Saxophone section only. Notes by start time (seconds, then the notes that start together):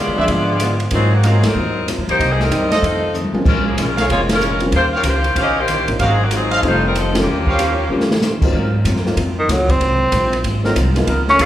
0.00 B3 F4 G#4 D5
0.93 F#3 C4 D#4 G#4
1.15 D#3 A#3 C4 F#4
1.26 F#3 C4 D#4 G#4
1.47 F#3 C4 D#4 A#4
2.09 A#3 D#4 G4 C5
2.31 G#4
2.41 G3 C4 D#4 A#4
2.72 F3 C4 D#4 A4
3.47 G#3 C#4 F4 A#4
3.68 F3 A#3 C#4 G#4
3.77 G#3 C#4 F4 A#4
4.12 A#3 F4 G#4 C#5
4.33 G#3 C#4 F4 A#4
4.75 A#3 F4 G4 C5
4.96 G3 C#4 F4 A#4
5.09 A#3 F4 G4 C5
5.41 C#4 G4 A#4 D#5
5.59 A#3 F4 G4 C5
5.99 G4
6.03 F#3 C4 D#4 G#4
6.24 D#3 A#3 C4 F#4
6.36 F#3 C4 D#4 G#4
6.67 A3 D#4 F4 C5
6.87 G3 C4 D#4 A#4
6.97 F3 C4 D#4 A4
7.19 F3 A#3 C#4 G4